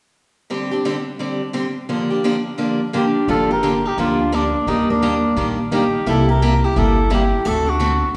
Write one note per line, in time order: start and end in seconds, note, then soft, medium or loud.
0.50 0.70 D3 medium
0.50 0.71 G3 soft
0.50 0.70 C4 medium
0.50 0.70 D4 medium
0.50 0.70 G4 medium
0.71 0.84 C4 soft
0.71 0.84 D4 soft
0.71 0.84 G4 soft
0.85 0.96 D3 medium
0.85 0.96 G3 medium
0.85 0.96 C4 medium
0.85 0.96 D4 medium
0.85 0.96 G4 medium
1.19 1.40 D3 medium
1.19 1.40 G3 medium
1.19 1.41 C4 medium
1.19 1.41 D4 medium
1.19 1.41 G4 medium
1.53 1.65 D3 medium
1.53 1.65 G3 medium
1.53 1.65 C4 medium
1.53 1.65 D4 medium
1.53 1.65 G4 medium
1.89 2.09 D3 medium
1.89 2.09 F3 soft
1.89 2.09 A#3 medium
1.89 2.10 D4 medium
1.89 2.09 G4 medium
2.10 2.23 A#3 soft
2.10 2.24 D4 soft
2.10 2.23 G4 medium
2.24 2.35 D3 medium
2.24 2.35 F3 medium
2.24 2.35 A#3 medium
2.24 2.35 D4 medium
2.24 2.35 G4 medium
2.58 2.79 D3 medium
2.58 2.79 F3 medium
2.58 2.79 A#3 medium
2.58 2.80 D4 medium
2.58 2.80 G4 medium
2.93 3.04 D3 medium
2.93 3.04 F3 medium
2.93 3.05 A#3 medium
2.93 3.05 D4 medium
2.93 3.05 G4 medium
2.93 3.28 G4 medium
3.28 3.84 G1 medium
3.28 3.49 D3 medium
3.28 3.49 F3 medium
3.28 3.50 A#3 medium
3.28 3.50 D4 medium
3.28 3.48 F4 medium
3.28 3.50 G4 medium
3.28 3.49 A4 medium
3.51 3.85 G4 medium
3.51 3.89 A#4 medium
3.63 3.74 D3 medium
3.63 3.74 F3 medium
3.63 3.74 A#3 medium
3.63 3.74 D4 medium
3.63 3.74 G4 medium
3.85 3.98 D#4 medium
3.85 3.99 G4 medium
3.97 4.53 D2 medium
3.97 4.19 D3 medium
3.97 4.19 F3 medium
3.97 4.19 A#3 medium
3.97 4.19 D4 medium
3.97 4.36 F4 medium
3.97 4.19 G4 medium
4.32 4.44 D3 medium
4.32 4.44 F3 medium
4.32 4.44 A#3 medium
4.32 4.44 D4 medium
4.32 4.70 D4 medium
4.32 4.44 G4 medium
4.67 5.23 D#2 medium
4.67 4.88 D#3 medium
4.67 4.88 G3 medium
4.67 4.89 A#3 medium
4.67 4.89 D4 medium
4.67 4.89 D#4 medium
4.67 4.89 G4 medium
4.90 5.55 A#3 medium
4.90 5.55 D4 medium
5.02 5.13 D#3 medium
5.02 5.13 G3 medium
5.02 5.14 A#3 medium
5.02 5.14 D4 medium
5.02 5.14 G4 medium
5.36 5.92 A#1 medium
5.36 5.58 D#3 medium
5.36 5.58 G3 medium
5.36 5.58 A#3 medium
5.36 5.58 D4 medium
5.36 5.58 G4 medium
5.71 5.83 D#3 medium
5.71 5.83 G3 medium
5.71 5.83 A#3 medium
5.71 5.83 D4 medium
5.71 6.04 D#4 medium
5.71 5.83 G4 medium
5.71 6.05 G4 medium
6.06 6.62 C2 medium
6.06 6.27 C3 medium
6.06 6.27 G3 medium
6.06 6.28 A#3 medium
6.06 6.28 E4 medium
6.06 6.28 G4 medium
6.06 6.28 A4 medium
6.29 6.64 G4 medium
6.29 6.66 A#4 medium
6.42 6.53 C3 medium
6.42 6.53 G3 medium
6.42 6.53 A#3 medium
6.42 6.53 E4 medium
6.42 6.53 G4 medium
6.64 6.75 E4 medium
6.64 6.80 G4 medium
6.76 7.32 G1 medium
6.76 6.97 C3 medium
6.76 6.97 G3 medium
6.76 6.97 A#3 medium
6.76 6.97 E4 medium
6.76 6.98 G4 medium
6.76 7.12 A4 medium
7.10 7.22 C3 medium
7.10 7.22 G3 medium
7.10 7.22 A#3 medium
7.10 7.22 E4 medium
7.10 7.22 G4 medium
7.10 7.49 G4 medium
7.45 8.01 D2 medium
7.45 7.66 D3 medium
7.45 7.67 A3 medium
7.45 7.67 C4 medium
7.45 7.67 F#4 medium
7.45 7.67 A4 medium
7.45 7.71 A4 medium
7.66 8.07 D4 medium
7.66 8.09 F#4 medium
7.80 7.91 D3 medium
7.80 7.91 A3 medium
7.80 7.92 C4 medium
7.80 7.91 F#4 medium
7.80 7.92 A4 medium